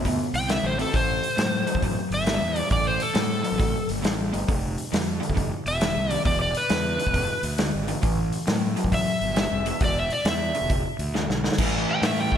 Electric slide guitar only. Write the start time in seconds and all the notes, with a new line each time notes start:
0.36 G5
0.51 E5
0.66 C5
0.81 A4
0.96 C5
2.14 E5
2.58 D5
2.72 D5
2.87 C5
3.02 A4
5.68 E5
6.12 D5
6.26 D5
6.42 D5
6.57 B4
8.94 E5
9.84 D5
9.99 E5
10.12 D5
10.28 E5
11.91 G5
12.06 E5
12.20 G5